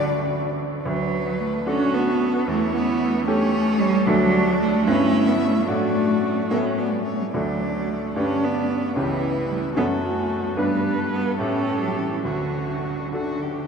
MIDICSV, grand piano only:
0, 0, Header, 1, 2, 480
1, 0, Start_track
1, 0, Key_signature, 2, "major"
1, 0, Tempo, 558659
1, 729, Time_signature, 6, 3, 24, 8
1, 1195, Tempo, 534759
1, 4555, Tempo, 550964
1, 6955, Tempo, 536673
1, 9835, Tempo, 578035
1, 11964, End_track
2, 0, Start_track
2, 0, Title_t, "Grand piano"
2, 0, Program_c, 0, 0
2, 0, Control_c, 0, 64, 127
2, 0, Note_on_c, 0, 38, 53
2, 0, Note_on_c, 0, 62, 50
2, 0, Note_on_c, 0, 66, 50
2, 0, Note_on_c, 0, 69, 45
2, 684, Note_off_c, 0, 38, 0
2, 685, Note_off_c, 0, 62, 0
2, 688, Note_off_c, 0, 66, 0
2, 690, Note_off_c, 0, 69, 0
2, 735, Note_on_c, 0, 38, 62
2, 746, Control_c, 0, 64, 0
2, 914, Control_c, 0, 64, 127
2, 1419, Note_off_c, 0, 38, 0
2, 1440, Note_on_c, 0, 62, 47
2, 1444, Note_on_c, 0, 66, 42
2, 1448, Note_on_c, 0, 69, 48
2, 2127, Note_off_c, 0, 62, 0
2, 2130, Note_off_c, 0, 66, 0
2, 2131, Note_off_c, 0, 69, 0
2, 2167, Note_on_c, 0, 40, 61
2, 2177, Control_c, 0, 64, 0
2, 2322, Control_c, 0, 64, 127
2, 2860, Note_off_c, 0, 40, 0
2, 2886, Note_on_c, 0, 61, 56
2, 2889, Note_on_c, 0, 67, 54
2, 2892, Note_on_c, 0, 69, 59
2, 3565, Note_off_c, 0, 61, 0
2, 3566, Note_off_c, 0, 67, 0
2, 3568, Note_off_c, 0, 69, 0
2, 3602, Note_on_c, 0, 38, 65
2, 3602, Note_on_c, 0, 62, 46
2, 3605, Note_on_c, 0, 66, 44
2, 3611, Note_on_c, 0, 69, 47
2, 3615, Control_c, 0, 64, 0
2, 3778, Control_c, 0, 64, 127
2, 4283, Note_off_c, 0, 62, 0
2, 4284, Note_off_c, 0, 66, 0
2, 4287, Note_off_c, 0, 69, 0
2, 4297, Note_off_c, 0, 38, 0
2, 4320, Note_on_c, 0, 43, 65
2, 4320, Note_on_c, 0, 59, 46
2, 4325, Note_on_c, 0, 64, 45
2, 4331, Note_on_c, 0, 71, 47
2, 4332, Control_c, 0, 64, 0
2, 4498, Control_c, 0, 64, 127
2, 4996, Note_off_c, 0, 59, 0
2, 4999, Note_off_c, 0, 64, 0
2, 5002, Note_off_c, 0, 71, 0
2, 5010, Note_off_c, 0, 43, 0
2, 5034, Note_on_c, 0, 62, 35
2, 5035, Note_on_c, 0, 45, 48
2, 5040, Note_on_c, 0, 66, 36
2, 5045, Note_on_c, 0, 69, 38
2, 5047, Control_c, 0, 64, 0
2, 5180, Control_c, 0, 64, 127
2, 5718, Note_off_c, 0, 62, 0
2, 5721, Note_off_c, 0, 66, 0
2, 5724, Note_off_c, 0, 69, 0
2, 5732, Note_off_c, 0, 45, 0
2, 5750, Note_on_c, 0, 61, 37
2, 5755, Note_on_c, 0, 45, 47
2, 5757, Note_on_c, 0, 64, 32
2, 5760, Note_on_c, 0, 69, 35
2, 5766, Control_c, 0, 64, 0
2, 5918, Control_c, 0, 64, 127
2, 6442, Note_off_c, 0, 61, 0
2, 6445, Note_off_c, 0, 64, 0
2, 6447, Note_off_c, 0, 69, 0
2, 6457, Note_off_c, 0, 45, 0
2, 6478, Note_on_c, 0, 38, 51
2, 6478, Note_on_c, 0, 62, 35
2, 6482, Note_on_c, 0, 66, 34
2, 6487, Note_on_c, 0, 69, 33
2, 6492, Control_c, 0, 64, 0
2, 6650, Control_c, 0, 64, 127
2, 7161, Note_off_c, 0, 62, 0
2, 7163, Note_off_c, 0, 66, 0
2, 7165, Note_off_c, 0, 69, 0
2, 7174, Note_off_c, 0, 38, 0
2, 7198, Note_on_c, 0, 62, 35
2, 7200, Note_on_c, 0, 43, 51
2, 7202, Note_on_c, 0, 67, 33
2, 7208, Note_on_c, 0, 71, 39
2, 7213, Control_c, 0, 64, 0
2, 7367, Control_c, 0, 64, 127
2, 7878, Note_off_c, 0, 62, 0
2, 7879, Note_off_c, 0, 67, 0
2, 7883, Note_off_c, 0, 71, 0
2, 7893, Note_off_c, 0, 43, 0
2, 7914, Note_on_c, 0, 37, 52
2, 7915, Note_on_c, 0, 61, 35
2, 7923, Note_on_c, 0, 67, 35
2, 7928, Control_c, 0, 64, 0
2, 7928, Note_on_c, 0, 71, 36
2, 8067, Control_c, 0, 64, 127
2, 8589, Note_off_c, 0, 61, 0
2, 8593, Note_off_c, 0, 67, 0
2, 8595, Note_off_c, 0, 71, 0
2, 8602, Note_off_c, 0, 37, 0
2, 8632, Note_on_c, 0, 42, 53
2, 8632, Note_on_c, 0, 61, 36
2, 8637, Note_on_c, 0, 66, 42
2, 8641, Control_c, 0, 64, 0
2, 8642, Note_on_c, 0, 69, 37
2, 8797, Control_c, 0, 64, 127
2, 9317, Note_off_c, 0, 61, 0
2, 9320, Note_off_c, 0, 66, 0
2, 9322, Note_off_c, 0, 69, 0
2, 9331, Note_off_c, 0, 42, 0
2, 9353, Note_on_c, 0, 59, 40
2, 9356, Note_on_c, 0, 43, 53
2, 9359, Note_on_c, 0, 62, 37
2, 9364, Note_on_c, 0, 71, 38
2, 9365, Control_c, 0, 64, 0
2, 9495, Control_c, 0, 64, 127
2, 10033, Note_off_c, 0, 59, 0
2, 10036, Note_off_c, 0, 62, 0
2, 10038, Note_off_c, 0, 71, 0
2, 10047, Note_off_c, 0, 43, 0
2, 10066, Note_on_c, 0, 64, 33
2, 10067, Note_on_c, 0, 45, 50
2, 10075, Note_on_c, 0, 67, 35
2, 10078, Note_on_c, 0, 69, 32
2, 10080, Control_c, 0, 64, 0
2, 10232, Control_c, 0, 64, 127
2, 10749, Note_off_c, 0, 64, 0
2, 10754, Note_off_c, 0, 67, 0
2, 10755, Note_off_c, 0, 69, 0
2, 10761, Note_off_c, 0, 45, 0
2, 10782, Note_on_c, 0, 38, 41
2, 10799, Control_c, 0, 64, 0
2, 10966, Control_c, 0, 64, 127
2, 11490, Note_off_c, 0, 38, 0
2, 11508, Note_on_c, 0, 62, 28
2, 11510, Note_on_c, 0, 66, 29
2, 11515, Note_on_c, 0, 69, 33
2, 11964, Note_off_c, 0, 62, 0
2, 11964, Note_off_c, 0, 66, 0
2, 11964, Note_off_c, 0, 69, 0
2, 11964, End_track
0, 0, End_of_file